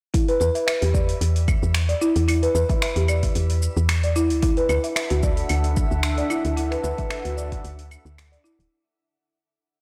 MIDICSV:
0, 0, Header, 1, 5, 480
1, 0, Start_track
1, 0, Tempo, 535714
1, 127, Time_signature, 4, 2, 24, 8
1, 8790, End_track
2, 0, Start_track
2, 0, Title_t, "Ambient pad"
2, 0, Program_c, 0, 92
2, 3960, Note_on_c, 0, 78, 90
2, 3963, Note_on_c, 0, 62, 82
2, 3963, Note_on_c, 0, 76, 77
2, 3964, Note_on_c, 0, 69, 79
2, 7767, Note_off_c, 0, 78, 0
2, 7769, Note_off_c, 0, 62, 0
2, 7769, Note_off_c, 0, 76, 0
2, 7770, Note_off_c, 0, 69, 0
2, 8790, End_track
3, 0, Start_track
3, 0, Title_t, "Marimba"
3, 0, Program_c, 1, 12
3, 123, Note_on_c, 1, 64, 79
3, 248, Note_off_c, 1, 64, 0
3, 256, Note_on_c, 1, 71, 76
3, 348, Note_off_c, 1, 71, 0
3, 359, Note_on_c, 1, 71, 84
3, 486, Note_off_c, 1, 71, 0
3, 493, Note_on_c, 1, 76, 73
3, 587, Note_off_c, 1, 76, 0
3, 598, Note_on_c, 1, 76, 79
3, 725, Note_off_c, 1, 76, 0
3, 729, Note_on_c, 1, 67, 68
3, 837, Note_off_c, 1, 67, 0
3, 842, Note_on_c, 1, 74, 70
3, 1313, Note_off_c, 1, 74, 0
3, 1692, Note_on_c, 1, 74, 71
3, 1794, Note_off_c, 1, 74, 0
3, 1805, Note_on_c, 1, 64, 103
3, 2031, Note_off_c, 1, 64, 0
3, 2042, Note_on_c, 1, 64, 80
3, 2167, Note_off_c, 1, 64, 0
3, 2176, Note_on_c, 1, 71, 78
3, 2273, Note_off_c, 1, 71, 0
3, 2283, Note_on_c, 1, 71, 87
3, 2408, Note_off_c, 1, 71, 0
3, 2412, Note_on_c, 1, 76, 78
3, 2519, Note_off_c, 1, 76, 0
3, 2529, Note_on_c, 1, 76, 84
3, 2651, Note_off_c, 1, 76, 0
3, 2657, Note_on_c, 1, 67, 69
3, 2762, Note_off_c, 1, 67, 0
3, 2766, Note_on_c, 1, 74, 67
3, 3235, Note_off_c, 1, 74, 0
3, 3618, Note_on_c, 1, 74, 72
3, 3716, Note_off_c, 1, 74, 0
3, 3726, Note_on_c, 1, 64, 92
3, 3953, Note_off_c, 1, 64, 0
3, 3964, Note_on_c, 1, 64, 82
3, 4088, Note_off_c, 1, 64, 0
3, 4098, Note_on_c, 1, 71, 77
3, 4192, Note_off_c, 1, 71, 0
3, 4203, Note_on_c, 1, 71, 89
3, 4328, Note_off_c, 1, 71, 0
3, 4335, Note_on_c, 1, 76, 76
3, 4431, Note_off_c, 1, 76, 0
3, 4442, Note_on_c, 1, 76, 83
3, 4567, Note_off_c, 1, 76, 0
3, 4572, Note_on_c, 1, 66, 75
3, 4679, Note_off_c, 1, 66, 0
3, 4686, Note_on_c, 1, 74, 70
3, 5155, Note_off_c, 1, 74, 0
3, 5536, Note_on_c, 1, 74, 75
3, 5636, Note_off_c, 1, 74, 0
3, 5645, Note_on_c, 1, 64, 96
3, 5875, Note_off_c, 1, 64, 0
3, 5885, Note_on_c, 1, 64, 83
3, 6009, Note_off_c, 1, 64, 0
3, 6014, Note_on_c, 1, 71, 73
3, 6113, Note_off_c, 1, 71, 0
3, 6124, Note_on_c, 1, 71, 93
3, 6248, Note_off_c, 1, 71, 0
3, 6254, Note_on_c, 1, 76, 74
3, 6351, Note_off_c, 1, 76, 0
3, 6362, Note_on_c, 1, 76, 83
3, 6487, Note_off_c, 1, 76, 0
3, 6494, Note_on_c, 1, 66, 74
3, 6600, Note_off_c, 1, 66, 0
3, 6603, Note_on_c, 1, 74, 75
3, 7074, Note_off_c, 1, 74, 0
3, 7454, Note_on_c, 1, 74, 73
3, 7555, Note_off_c, 1, 74, 0
3, 7563, Note_on_c, 1, 64, 101
3, 7794, Note_off_c, 1, 64, 0
3, 8790, End_track
4, 0, Start_track
4, 0, Title_t, "FM bass"
4, 0, Program_c, 2, 39
4, 366, Note_on_c, 2, 40, 94
4, 448, Note_off_c, 2, 40, 0
4, 739, Note_on_c, 2, 40, 83
4, 1023, Note_off_c, 2, 40, 0
4, 1086, Note_on_c, 2, 40, 80
4, 1379, Note_off_c, 2, 40, 0
4, 1458, Note_on_c, 2, 40, 92
4, 1742, Note_off_c, 2, 40, 0
4, 1936, Note_on_c, 2, 40, 89
4, 2221, Note_off_c, 2, 40, 0
4, 2283, Note_on_c, 2, 40, 89
4, 2367, Note_off_c, 2, 40, 0
4, 2653, Note_on_c, 2, 40, 78
4, 2940, Note_off_c, 2, 40, 0
4, 3006, Note_on_c, 2, 40, 82
4, 3300, Note_off_c, 2, 40, 0
4, 3375, Note_on_c, 2, 40, 100
4, 3856, Note_on_c, 2, 38, 92
4, 3870, Note_off_c, 2, 40, 0
4, 4142, Note_off_c, 2, 38, 0
4, 4205, Note_on_c, 2, 38, 96
4, 4287, Note_off_c, 2, 38, 0
4, 4579, Note_on_c, 2, 38, 88
4, 4863, Note_off_c, 2, 38, 0
4, 4928, Note_on_c, 2, 38, 88
4, 5220, Note_off_c, 2, 38, 0
4, 5296, Note_on_c, 2, 38, 101
4, 5581, Note_off_c, 2, 38, 0
4, 5779, Note_on_c, 2, 38, 86
4, 6063, Note_off_c, 2, 38, 0
4, 6128, Note_on_c, 2, 38, 97
4, 6209, Note_off_c, 2, 38, 0
4, 6499, Note_on_c, 2, 38, 79
4, 6783, Note_off_c, 2, 38, 0
4, 6849, Note_on_c, 2, 38, 82
4, 7141, Note_off_c, 2, 38, 0
4, 7216, Note_on_c, 2, 38, 103
4, 7501, Note_off_c, 2, 38, 0
4, 7698, Note_on_c, 2, 26, 100
4, 7767, Note_off_c, 2, 26, 0
4, 8790, End_track
5, 0, Start_track
5, 0, Title_t, "Drums"
5, 127, Note_on_c, 9, 46, 66
5, 128, Note_on_c, 9, 36, 114
5, 130, Note_on_c, 9, 82, 42
5, 217, Note_off_c, 9, 46, 0
5, 218, Note_off_c, 9, 36, 0
5, 220, Note_off_c, 9, 82, 0
5, 255, Note_on_c, 9, 46, 29
5, 257, Note_on_c, 9, 82, 20
5, 344, Note_off_c, 9, 46, 0
5, 347, Note_off_c, 9, 82, 0
5, 367, Note_on_c, 9, 82, 71
5, 457, Note_off_c, 9, 82, 0
5, 495, Note_on_c, 9, 46, 31
5, 497, Note_on_c, 9, 82, 31
5, 584, Note_off_c, 9, 46, 0
5, 587, Note_off_c, 9, 82, 0
5, 607, Note_on_c, 9, 26, 96
5, 607, Note_on_c, 9, 46, 66
5, 607, Note_on_c, 9, 75, 71
5, 609, Note_on_c, 9, 82, 42
5, 696, Note_off_c, 9, 26, 0
5, 696, Note_off_c, 9, 46, 0
5, 696, Note_off_c, 9, 75, 0
5, 699, Note_off_c, 9, 82, 0
5, 735, Note_on_c, 9, 46, 41
5, 737, Note_on_c, 9, 82, 21
5, 824, Note_off_c, 9, 46, 0
5, 827, Note_off_c, 9, 82, 0
5, 847, Note_on_c, 9, 36, 95
5, 848, Note_on_c, 9, 82, 73
5, 936, Note_off_c, 9, 36, 0
5, 938, Note_off_c, 9, 82, 0
5, 975, Note_on_c, 9, 46, 46
5, 978, Note_on_c, 9, 82, 34
5, 1065, Note_off_c, 9, 46, 0
5, 1068, Note_off_c, 9, 82, 0
5, 1087, Note_on_c, 9, 46, 63
5, 1090, Note_on_c, 9, 82, 40
5, 1177, Note_off_c, 9, 46, 0
5, 1179, Note_off_c, 9, 82, 0
5, 1218, Note_on_c, 9, 46, 31
5, 1221, Note_on_c, 9, 82, 22
5, 1308, Note_off_c, 9, 46, 0
5, 1311, Note_off_c, 9, 82, 0
5, 1326, Note_on_c, 9, 75, 73
5, 1327, Note_on_c, 9, 36, 95
5, 1328, Note_on_c, 9, 82, 70
5, 1416, Note_off_c, 9, 36, 0
5, 1416, Note_off_c, 9, 75, 0
5, 1418, Note_off_c, 9, 82, 0
5, 1459, Note_on_c, 9, 82, 31
5, 1549, Note_off_c, 9, 82, 0
5, 1563, Note_on_c, 9, 26, 99
5, 1563, Note_on_c, 9, 46, 66
5, 1566, Note_on_c, 9, 82, 46
5, 1653, Note_off_c, 9, 26, 0
5, 1653, Note_off_c, 9, 46, 0
5, 1656, Note_off_c, 9, 82, 0
5, 1695, Note_on_c, 9, 46, 30
5, 1697, Note_on_c, 9, 82, 20
5, 1785, Note_off_c, 9, 46, 0
5, 1787, Note_off_c, 9, 82, 0
5, 1808, Note_on_c, 9, 82, 71
5, 1897, Note_off_c, 9, 82, 0
5, 1933, Note_on_c, 9, 46, 31
5, 1936, Note_on_c, 9, 82, 29
5, 2023, Note_off_c, 9, 46, 0
5, 2025, Note_off_c, 9, 82, 0
5, 2047, Note_on_c, 9, 46, 66
5, 2047, Note_on_c, 9, 75, 78
5, 2050, Note_on_c, 9, 82, 45
5, 2137, Note_off_c, 9, 46, 0
5, 2137, Note_off_c, 9, 75, 0
5, 2139, Note_off_c, 9, 82, 0
5, 2177, Note_on_c, 9, 46, 29
5, 2179, Note_on_c, 9, 82, 22
5, 2266, Note_off_c, 9, 46, 0
5, 2269, Note_off_c, 9, 82, 0
5, 2288, Note_on_c, 9, 82, 82
5, 2377, Note_off_c, 9, 82, 0
5, 2415, Note_on_c, 9, 46, 27
5, 2416, Note_on_c, 9, 36, 95
5, 2417, Note_on_c, 9, 82, 33
5, 2505, Note_off_c, 9, 36, 0
5, 2505, Note_off_c, 9, 46, 0
5, 2507, Note_off_c, 9, 82, 0
5, 2527, Note_on_c, 9, 26, 96
5, 2527, Note_on_c, 9, 46, 64
5, 2530, Note_on_c, 9, 82, 45
5, 2617, Note_off_c, 9, 26, 0
5, 2617, Note_off_c, 9, 46, 0
5, 2620, Note_off_c, 9, 82, 0
5, 2653, Note_on_c, 9, 46, 41
5, 2656, Note_on_c, 9, 82, 23
5, 2743, Note_off_c, 9, 46, 0
5, 2745, Note_off_c, 9, 82, 0
5, 2763, Note_on_c, 9, 75, 69
5, 2766, Note_on_c, 9, 82, 74
5, 2853, Note_off_c, 9, 75, 0
5, 2855, Note_off_c, 9, 82, 0
5, 2894, Note_on_c, 9, 46, 44
5, 2896, Note_on_c, 9, 36, 60
5, 2897, Note_on_c, 9, 82, 33
5, 2984, Note_off_c, 9, 46, 0
5, 2985, Note_off_c, 9, 36, 0
5, 2986, Note_off_c, 9, 82, 0
5, 3004, Note_on_c, 9, 46, 62
5, 3007, Note_on_c, 9, 82, 44
5, 3094, Note_off_c, 9, 46, 0
5, 3096, Note_off_c, 9, 82, 0
5, 3134, Note_on_c, 9, 46, 33
5, 3136, Note_on_c, 9, 82, 23
5, 3223, Note_off_c, 9, 46, 0
5, 3226, Note_off_c, 9, 82, 0
5, 3247, Note_on_c, 9, 82, 77
5, 3337, Note_off_c, 9, 82, 0
5, 3377, Note_on_c, 9, 82, 31
5, 3467, Note_off_c, 9, 82, 0
5, 3485, Note_on_c, 9, 26, 101
5, 3485, Note_on_c, 9, 46, 65
5, 3485, Note_on_c, 9, 75, 75
5, 3487, Note_on_c, 9, 82, 47
5, 3574, Note_off_c, 9, 26, 0
5, 3574, Note_off_c, 9, 46, 0
5, 3574, Note_off_c, 9, 75, 0
5, 3577, Note_off_c, 9, 82, 0
5, 3615, Note_on_c, 9, 46, 28
5, 3617, Note_on_c, 9, 82, 21
5, 3704, Note_off_c, 9, 46, 0
5, 3707, Note_off_c, 9, 82, 0
5, 3727, Note_on_c, 9, 82, 71
5, 3816, Note_off_c, 9, 82, 0
5, 3856, Note_on_c, 9, 46, 30
5, 3858, Note_on_c, 9, 82, 31
5, 3945, Note_off_c, 9, 46, 0
5, 3948, Note_off_c, 9, 82, 0
5, 3965, Note_on_c, 9, 46, 65
5, 3967, Note_on_c, 9, 36, 113
5, 3967, Note_on_c, 9, 82, 47
5, 4054, Note_off_c, 9, 46, 0
5, 4057, Note_off_c, 9, 36, 0
5, 4057, Note_off_c, 9, 82, 0
5, 4095, Note_on_c, 9, 46, 27
5, 4097, Note_on_c, 9, 82, 22
5, 4184, Note_off_c, 9, 46, 0
5, 4187, Note_off_c, 9, 82, 0
5, 4205, Note_on_c, 9, 75, 76
5, 4207, Note_on_c, 9, 82, 75
5, 4294, Note_off_c, 9, 75, 0
5, 4297, Note_off_c, 9, 82, 0
5, 4336, Note_on_c, 9, 46, 28
5, 4338, Note_on_c, 9, 82, 35
5, 4425, Note_off_c, 9, 46, 0
5, 4428, Note_off_c, 9, 82, 0
5, 4445, Note_on_c, 9, 26, 100
5, 4445, Note_on_c, 9, 46, 65
5, 4448, Note_on_c, 9, 82, 47
5, 4535, Note_off_c, 9, 26, 0
5, 4535, Note_off_c, 9, 46, 0
5, 4538, Note_off_c, 9, 82, 0
5, 4573, Note_on_c, 9, 46, 44
5, 4575, Note_on_c, 9, 82, 22
5, 4662, Note_off_c, 9, 46, 0
5, 4665, Note_off_c, 9, 82, 0
5, 4686, Note_on_c, 9, 82, 78
5, 4688, Note_on_c, 9, 36, 106
5, 4776, Note_off_c, 9, 82, 0
5, 4778, Note_off_c, 9, 36, 0
5, 4813, Note_on_c, 9, 46, 41
5, 4815, Note_on_c, 9, 82, 34
5, 4902, Note_off_c, 9, 46, 0
5, 4905, Note_off_c, 9, 82, 0
5, 4922, Note_on_c, 9, 46, 59
5, 4922, Note_on_c, 9, 75, 73
5, 4925, Note_on_c, 9, 82, 46
5, 5012, Note_off_c, 9, 46, 0
5, 5012, Note_off_c, 9, 75, 0
5, 5015, Note_off_c, 9, 82, 0
5, 5054, Note_on_c, 9, 46, 31
5, 5056, Note_on_c, 9, 82, 22
5, 5143, Note_off_c, 9, 46, 0
5, 5146, Note_off_c, 9, 82, 0
5, 5167, Note_on_c, 9, 82, 77
5, 5169, Note_on_c, 9, 36, 110
5, 5256, Note_off_c, 9, 82, 0
5, 5258, Note_off_c, 9, 36, 0
5, 5298, Note_on_c, 9, 82, 33
5, 5388, Note_off_c, 9, 82, 0
5, 5404, Note_on_c, 9, 26, 103
5, 5404, Note_on_c, 9, 46, 66
5, 5406, Note_on_c, 9, 82, 49
5, 5493, Note_off_c, 9, 26, 0
5, 5493, Note_off_c, 9, 46, 0
5, 5496, Note_off_c, 9, 82, 0
5, 5535, Note_on_c, 9, 46, 29
5, 5537, Note_on_c, 9, 82, 21
5, 5624, Note_off_c, 9, 46, 0
5, 5627, Note_off_c, 9, 82, 0
5, 5647, Note_on_c, 9, 75, 75
5, 5649, Note_on_c, 9, 82, 78
5, 5736, Note_off_c, 9, 75, 0
5, 5739, Note_off_c, 9, 82, 0
5, 5777, Note_on_c, 9, 46, 29
5, 5779, Note_on_c, 9, 82, 32
5, 5866, Note_off_c, 9, 46, 0
5, 5869, Note_off_c, 9, 82, 0
5, 5889, Note_on_c, 9, 46, 63
5, 5892, Note_on_c, 9, 82, 47
5, 5979, Note_off_c, 9, 46, 0
5, 5982, Note_off_c, 9, 82, 0
5, 6020, Note_on_c, 9, 26, 29
5, 6020, Note_on_c, 9, 46, 26
5, 6022, Note_on_c, 9, 82, 22
5, 6109, Note_off_c, 9, 26, 0
5, 6109, Note_off_c, 9, 46, 0
5, 6112, Note_off_c, 9, 82, 0
5, 6130, Note_on_c, 9, 82, 81
5, 6220, Note_off_c, 9, 82, 0
5, 6257, Note_on_c, 9, 46, 28
5, 6259, Note_on_c, 9, 82, 34
5, 6260, Note_on_c, 9, 36, 97
5, 6346, Note_off_c, 9, 46, 0
5, 6349, Note_off_c, 9, 36, 0
5, 6349, Note_off_c, 9, 82, 0
5, 6366, Note_on_c, 9, 26, 90
5, 6366, Note_on_c, 9, 46, 61
5, 6366, Note_on_c, 9, 75, 77
5, 6369, Note_on_c, 9, 82, 46
5, 6456, Note_off_c, 9, 26, 0
5, 6456, Note_off_c, 9, 46, 0
5, 6456, Note_off_c, 9, 75, 0
5, 6458, Note_off_c, 9, 82, 0
5, 6497, Note_on_c, 9, 46, 41
5, 6500, Note_on_c, 9, 82, 21
5, 6587, Note_off_c, 9, 46, 0
5, 6589, Note_off_c, 9, 82, 0
5, 6612, Note_on_c, 9, 82, 80
5, 6701, Note_off_c, 9, 82, 0
5, 6739, Note_on_c, 9, 46, 45
5, 6740, Note_on_c, 9, 36, 56
5, 6741, Note_on_c, 9, 82, 34
5, 6828, Note_off_c, 9, 46, 0
5, 6829, Note_off_c, 9, 36, 0
5, 6831, Note_off_c, 9, 82, 0
5, 6850, Note_on_c, 9, 46, 60
5, 6852, Note_on_c, 9, 82, 44
5, 6939, Note_off_c, 9, 46, 0
5, 6942, Note_off_c, 9, 82, 0
5, 6978, Note_on_c, 9, 46, 31
5, 6981, Note_on_c, 9, 82, 24
5, 7068, Note_off_c, 9, 46, 0
5, 7071, Note_off_c, 9, 82, 0
5, 7090, Note_on_c, 9, 75, 76
5, 7093, Note_on_c, 9, 82, 81
5, 7180, Note_off_c, 9, 75, 0
5, 7182, Note_off_c, 9, 82, 0
5, 7221, Note_on_c, 9, 82, 33
5, 7311, Note_off_c, 9, 82, 0
5, 7333, Note_on_c, 9, 26, 105
5, 7333, Note_on_c, 9, 46, 66
5, 7335, Note_on_c, 9, 82, 43
5, 7422, Note_off_c, 9, 26, 0
5, 7422, Note_off_c, 9, 46, 0
5, 7425, Note_off_c, 9, 82, 0
5, 7463, Note_on_c, 9, 46, 27
5, 7465, Note_on_c, 9, 82, 20
5, 7552, Note_off_c, 9, 46, 0
5, 7555, Note_off_c, 9, 82, 0
5, 7576, Note_on_c, 9, 82, 80
5, 7666, Note_off_c, 9, 82, 0
5, 7705, Note_on_c, 9, 46, 29
5, 7708, Note_on_c, 9, 82, 33
5, 7795, Note_off_c, 9, 46, 0
5, 7798, Note_off_c, 9, 82, 0
5, 8790, End_track
0, 0, End_of_file